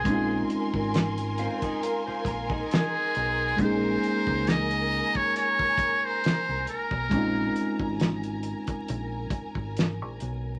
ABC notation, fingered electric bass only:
X:1
M:4/4
L:1/16
Q:"Swing 16ths" 1/4=68
K:Bbm
V:1 name="Fingered electric bass" clef=bass
B,,,2 z A,,,4 z3 B,,,2 z2 _C,,2 | B,,,2 z D,,4 z6 C,, z _C,, | B,,,2 z A,,,4 z B,,,2 z A,,,2 B,,, _C,,2 |]